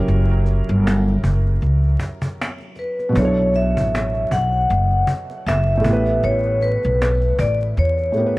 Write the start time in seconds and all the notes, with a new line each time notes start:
Already playing: F#3 C#4 E4 G4 A#4
0.08 F#1, cajon slap
0.28 cajon slap
0.46 cajon slap
0.68 G1, cajon slap
0.87 cajon slap
1.07 cajon slap
1.24 F#1, cajon bass
1.46 cajon slap
1.62 C#2, cajon slap
1.83 cajon slap
2.00 cajon bass
2.22 cajon bass
2.42 cajon slap
2.60 cajon slap
2.76 B4, cajon slap
2.99 cajon slap
3.09 B2 F#3
3.15 B1 D4 E4 C#5, cajon bass
3.22 A4 C#5
3.36 cajon slap
3.54 E5, cajon slap
3.77 A1, cajon bass
3.95 cajon slap
4.14 cajon slap
4.31 B1 F#5, cajon bass
4.53 cajon slap
4.69 F#1, cajon slap
4.90 cajon slap
5.07 cajon bass
5.30 cajon slap
5.46 F#1 E5, cajon slap
5.67 cajon slap
5.77 A2
5.81 A1 A3, cajon bass
5.85 B3 G4
5.93 B4
6.06 cajon slap
6.23 A1 C#5, cajon slap
6.43 cajon slap
6.61 B4, cajon slap
6.83 B1, cajon slap
7.02 cajon slap
7.21 cajon slap
7.39 A1 D5, cajon bass
7.60 cajon slap
7.77 E2 C#5, cajon slap
7.98 cajon slap
8.12 A2 A3 B3, cajon slap
8.18 G4 A#4
8.26 B4